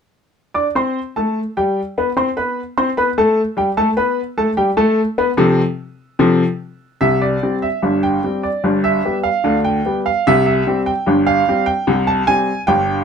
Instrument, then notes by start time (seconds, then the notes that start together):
upright piano
0.54 D4 D5 D6
0.75 C4 C5 C6
1.16 A3 A4 A5
1.57 G3 G4 G5
1.98 B3 B4 B5
2.17 C4 C5 C6
2.37 B3 B4 B5
2.78 C4 C5 C6
2.97 B3 B4 B5
3.18 A3 A4 A5
3.57 G3 G4 G5
3.77 A3 A4 A5
3.97 B3 B4 B5
4.38 A3 A4 A5
4.57 G3 G4 G5
4.77 A3 A4 A5
5.18 B3 B4 B5
5.37 C3 F3 C4 A4
6.19 C3 F3 C4 A4
7.01 C2 C3 E5
7.22 D5
7.43 G3 C4 G4
7.62 E5
7.82 G1 G2
8.03 G5
8.24 G3 C4 G4
8.43 D5
8.64 G1 G2
8.84 E5
9.05 G3 B3 G4
9.23 F5
9.44 D2 D3
9.65 G5
9.85 G3 B3 G4
10.06 F5
10.27 C2 C3 E5
10.46 E5
10.67 G3 C4 G4
10.86 G5
11.06 G1 G2
11.27 F5
11.48 G3 C4 G4
11.66 G5
11.87 C2 C3
12.07 A5
12.27 G3 C4 G4 G#5
12.67 G1 G2 G5